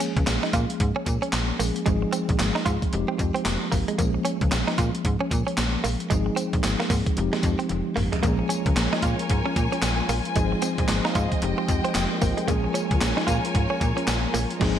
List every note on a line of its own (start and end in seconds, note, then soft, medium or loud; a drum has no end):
0.00 1.56 F3 medium
0.00 1.56 G#3 medium
0.00 1.56 A#3 medium
0.00 1.57 C#4 medium
0.00 0.12 C#4 medium
0.00 1.57 G#4 medium
0.00 closed hi-hat medium
0.00 tambourine medium
0.17 0.24 C#2 loud
0.17 kick loud
0.17 closed hi-hat medium
0.27 0.39 A#1 medium
0.27 muted clean electric guitar stroke soft
0.27 snare loud
0.27 clap medium
0.27 closed hi-hat medium
0.27 tambourine medium
0.43 0.51 D#4 medium
0.43 snare medium
0.53 0.65 A#2 loud
0.53 0.66 F4 medium
0.53 kick loud
0.53 closed hi-hat medium
0.53 tambourine medium
0.70 closed hi-hat medium
0.80 0.92 G#2 loud
0.80 kick loud
0.80 closed hi-hat medium
0.96 1.04 C#4 medium
1.06 1.18 A#2 loud
1.06 muted clean electric guitar stroke soft
1.06 kick medium
1.06 closed hi-hat medium
1.06 tambourine medium
1.22 1.30 C#4 medium
1.22 closed hi-hat soft
1.33 1.52 A#1 medium
1.33 snare loud
1.33 clap loud
1.33 closed hi-hat medium
1.33 tambourine medium
1.59 1.72 A#1 medium
1.59 1.85 F3 medium
1.59 1.85 G#3 medium
1.59 1.72 A#3 medium
1.59 1.87 A#3 medium
1.59 1.87 C#4 medium
1.59 1.87 G#4 medium
1.59 open hi-hat medium
1.59 tambourine medium
1.76 closed hi-hat medium
1.86 2.05 G#1 loud
1.86 2.90 F3 medium
1.86 1.98 G#3 medium
1.86 2.90 G#3 medium
1.86 2.91 C4 medium
1.86 2.91 D#4 medium
1.86 2.91 G#4 medium
1.86 kick loud
1.86 closed hi-hat medium
1.86 tambourine medium
2.02 muted clean electric guitar stroke soft
2.13 2.25 C4 medium
2.13 closed hi-hat medium
2.13 tambourine medium
2.29 2.37 A#1 loud
2.29 kick loud
2.29 closed hi-hat medium
2.39 2.52 G#1 loud
2.39 muted clean electric guitar stroke soft
2.39 snare loud
2.39 clap loud
2.39 closed hi-hat medium
2.39 tambourine medium
2.55 2.63 D#4 medium
2.55 snare medium
2.66 2.78 G#2 loud
2.66 2.78 F4 medium
2.66 kick loud
2.66 closed hi-hat medium
2.66 tambourine medium
2.82 kick loud
2.82 closed hi-hat medium
2.93 3.04 F1 loud
2.93 3.97 F3 medium
2.93 3.97 G#3 medium
2.93 3.97 C4 medium
2.93 3.97 D#4 medium
2.93 3.98 G4 medium
2.93 closed hi-hat medium
3.08 3.16 C4 medium
3.18 3.31 F2 loud
3.18 muted clean electric guitar stroke soft
3.18 kick loud
3.18 closed hi-hat medium
3.18 tambourine medium
3.34 3.43 C4 medium
3.34 closed hi-hat soft
3.45 3.57 F1 medium
3.45 muted clean electric guitar stroke soft
3.45 snare loud
3.45 clap loud
3.45 closed hi-hat medium
3.45 tambourine medium
3.72 3.84 G#1 medium
3.72 3.84 A#3 medium
3.72 kick medium
3.72 open hi-hat medium
3.72 tambourine medium
3.88 3.96 G#3 medium
3.88 closed hi-hat medium
3.98 4.18 A#1 loud
3.98 6.07 F3 medium
3.98 6.07 G#3 medium
3.98 4.11 A#3 medium
3.98 6.08 A#3 medium
3.98 6.08 C#4 medium
3.98 6.08 G#4 medium
3.98 kick loud
3.98 closed hi-hat medium
3.98 tambourine medium
4.14 muted clean electric guitar stroke soft
4.25 4.37 C#4 medium
4.25 closed hi-hat medium
4.25 tambourine medium
4.41 4.49 C#2 loud
4.41 kick loud
4.41 closed hi-hat medium
4.51 4.64 A#1 medium
4.51 muted clean electric guitar stroke soft
4.51 snare loud
4.51 clap medium
4.51 closed hi-hat medium
4.51 tambourine medium
4.67 4.75 D#4 medium
4.67 snare medium
4.78 4.90 A#2 loud
4.78 4.90 F4 medium
4.78 kick medium
4.78 closed hi-hat medium
4.78 tambourine medium
4.95 closed hi-hat medium
5.05 5.17 G#2 loud
5.05 kick loud
5.05 closed hi-hat medium
5.21 5.28 C#4 medium
5.31 5.43 A#2 loud
5.31 muted clean electric guitar stroke soft
5.31 kick loud
5.31 closed hi-hat medium
5.31 tambourine medium
5.47 5.55 C#4 medium
5.47 closed hi-hat soft
5.58 5.77 A#1 medium
5.58 snare loud
5.58 clap loud
5.58 closed hi-hat medium
5.58 tambourine medium
5.84 5.96 A#1 medium
5.84 5.96 A#3 medium
5.84 open hi-hat medium
5.84 tambourine medium
6.00 closed hi-hat medium
6.10 6.30 G#1 loud
6.10 7.15 F3 medium
6.10 6.23 G#3 medium
6.10 7.15 G#3 medium
6.10 7.16 C4 medium
6.10 7.16 D#4 medium
6.10 7.16 G#4 medium
6.10 kick loud
6.10 closed hi-hat medium
6.10 tambourine medium
6.26 muted clean electric guitar stroke soft
6.36 6.49 C4 medium
6.36 closed hi-hat medium
6.36 tambourine medium
6.53 6.61 A#1 loud
6.53 kick loud
6.53 closed hi-hat medium
6.63 6.76 G#1 medium
6.63 muted clean electric guitar stroke soft
6.63 snare loud
6.63 clap medium
6.63 closed hi-hat medium
6.63 tambourine medium
6.80 6.88 A#3 medium
6.80 snare medium
6.90 7.02 G#2 loud
6.90 7.03 A#3 medium
6.90 kick medium
6.90 open hi-hat medium
6.90 tambourine medium
7.06 kick loud
7.06 closed hi-hat medium
7.17 7.29 F1 loud
7.17 8.21 F3 medium
7.17 8.21 G#3 medium
7.17 8.22 C4 medium
7.17 8.22 D#4 medium
7.17 8.22 G4 medium
7.17 closed hi-hat medium
7.33 7.41 G#3 medium
7.33 snare medium
7.43 7.55 F2 loud
7.43 muted clean electric guitar stroke soft
7.43 kick medium
7.43 closed hi-hat medium
7.43 tambourine medium
7.59 7.67 C4 medium
7.59 closed hi-hat soft
7.69 7.82 F1 medium
7.69 muted clean electric guitar stroke soft
7.69 closed hi-hat medium
7.69 high tom medium
7.96 8.09 G#1 medium
7.96 8.08 A#3 medium
7.96 mid tom loud
7.96 open hi-hat medium
8.12 8.20 G#3 medium
8.12 closed hi-hat medium
8.12 floor tom loud
8.22 8.42 A#1 loud
8.22 10.31 F3 medium
8.22 10.32 G#3 medium
8.22 8.35 A#3 medium
8.22 10.32 A#3 medium
8.22 10.32 C#4 medium
8.22 11.39 F4 medium
8.22 10.33 G#4 medium
8.22 10.34 A#4 medium
8.22 10.34 C#5 medium
8.22 11.39 G#5 medium
8.22 kick loud
8.22 closed hi-hat medium
8.22 tambourine medium
8.39 muted clean electric guitar stroke soft
8.49 8.62 C#4 medium
8.49 closed hi-hat medium
8.49 tambourine medium
8.66 8.73 C#2 loud
8.66 kick loud
8.66 closed hi-hat medium
8.76 8.88 A#1 medium
8.76 muted clean electric guitar stroke soft
8.76 snare loud
8.76 clap medium
8.76 closed hi-hat medium
8.76 tambourine medium
8.93 9.00 D#4 medium
8.93 snare medium
9.02 9.15 A#2 medium
9.02 9.15 F4 medium
9.02 kick loud
9.02 closed hi-hat medium
9.02 tambourine medium
9.19 closed hi-hat medium
9.30 9.42 G#2 loud
9.30 kick loud
9.30 closed hi-hat medium
9.46 9.53 C#4 medium
9.56 9.68 A#2 loud
9.56 muted clean electric guitar stroke soft
9.56 kick loud
9.56 closed hi-hat medium
9.56 tambourine medium
9.72 9.80 C#4 medium
9.72 closed hi-hat soft
9.82 10.02 A#1 medium
9.82 snare loud
9.82 clap loud
9.82 closed hi-hat medium
9.82 tambourine medium
10.09 10.21 A#1 medium
10.09 10.22 A#3 medium
10.09 open hi-hat medium
10.09 tambourine medium
10.25 closed hi-hat medium
10.35 10.55 G#1 loud
10.35 11.40 F3 medium
10.35 10.48 G#3 medium
10.35 11.40 G#3 medium
10.35 11.40 C4 medium
10.35 11.41 D#4 medium
10.35 11.41 G#4 medium
10.35 11.41 C5 medium
10.35 12.46 D#5 medium
10.35 kick loud
10.35 closed hi-hat medium
10.35 tambourine medium
10.52 muted clean electric guitar stroke soft
10.62 10.75 C4 medium
10.62 closed hi-hat medium
10.62 tambourine medium
10.78 10.86 A#1 loud
10.78 kick loud
10.78 closed hi-hat medium
10.88 11.01 G#1 loud
10.88 muted clean electric guitar stroke soft
10.88 snare loud
10.88 clap medium
10.88 closed hi-hat medium
10.88 tambourine medium
11.05 11.13 D#4 medium
11.05 11.15 F5 medium
11.05 snare medium
11.15 11.27 G#2 loud
11.15 11.28 F4 medium
11.15 11.31 D#5 medium
11.15 kick medium
11.15 closed hi-hat medium
11.15 tambourine medium
11.32 11.57 C5 medium
11.32 kick loud
11.32 closed hi-hat medium
11.41 11.54 F1 loud
11.41 12.46 F3 medium
11.41 12.46 G#3 medium
11.41 12.48 G#3 medium
11.41 12.46 C4 medium
11.41 12.47 D#4 medium
11.41 14.79 F4 medium
11.41 11.95 G4 medium
11.41 12.48 G5 medium
11.41 closed hi-hat medium
11.58 11.66 C4 medium
11.68 11.80 F2 loud
11.68 muted clean electric guitar stroke soft
11.68 kick loud
11.68 closed hi-hat medium
11.68 tambourine medium
11.85 11.92 C4 medium
11.85 closed hi-hat soft
11.95 12.07 F1 medium
11.95 muted clean electric guitar stroke soft
11.95 snare loud
11.95 clap loud
11.95 closed hi-hat medium
11.95 tambourine medium
12.12 12.21 A#4 medium
12.22 12.34 G#1 medium
12.22 12.34 A#3 medium
12.22 12.37 C5 medium
12.22 kick medium
12.22 open hi-hat medium
12.22 tambourine medium
12.37 12.45 G#3 medium
12.37 12.48 G#4 medium
12.37 closed hi-hat medium
12.47 12.67 A#1 loud
12.47 14.56 F3 medium
12.47 14.56 G#3 medium
12.47 12.60 A#3 loud
12.47 14.57 A#3 medium
12.47 14.57 C#4 medium
12.47 14.57 G#4 medium
12.47 14.59 A#4 medium
12.47 14.59 C#5 medium
12.47 14.59 G#5 medium
12.47 kick loud
12.47 closed hi-hat medium
12.47 tambourine medium
12.64 muted clean electric guitar stroke soft
12.74 12.87 C#4 medium
12.74 closed hi-hat medium
12.74 tambourine medium
12.91 12.98 C#2 loud
12.91 kick loud
12.91 closed hi-hat medium
13.01 13.13 A#1 medium
13.01 muted clean electric guitar stroke soft
13.01 snare loud
13.01 clap medium
13.01 closed hi-hat medium
13.01 tambourine medium
13.17 13.25 D#4 medium
13.17 snare medium
13.27 13.40 A#2 medium
13.27 13.39 F4 medium
13.27 kick medium
13.27 closed hi-hat medium
13.27 tambourine medium
13.45 closed hi-hat medium
13.55 13.66 G#2 medium
13.55 kick loud
13.55 closed hi-hat medium
13.70 13.78 C#4 medium
13.80 13.93 A#2 loud
13.80 muted clean electric guitar stroke soft
13.80 kick loud
13.80 closed hi-hat medium
13.80 tambourine medium
13.97 14.05 C#4 medium
13.97 closed hi-hat soft
14.07 14.27 A#1 loud
14.07 snare loud
14.07 clap medium
14.07 closed hi-hat medium
14.07 tambourine medium
14.34 14.46 A#1 loud
14.34 14.46 A#3 medium
14.34 open hi-hat medium
14.34 tambourine medium
14.50 closed hi-hat soft
14.59 14.79 G#1 loud
14.59 14.79 F3 loud
14.59 14.79 G#3 loud
14.59 14.79 C4 loud
14.59 14.79 D#4 loud
14.59 14.79 G#4 loud
14.59 14.79 C5 medium
14.59 14.79 D#5 medium
14.59 14.79 G#5 medium
14.59 kick loud
14.59 snare loud
14.59 crash medium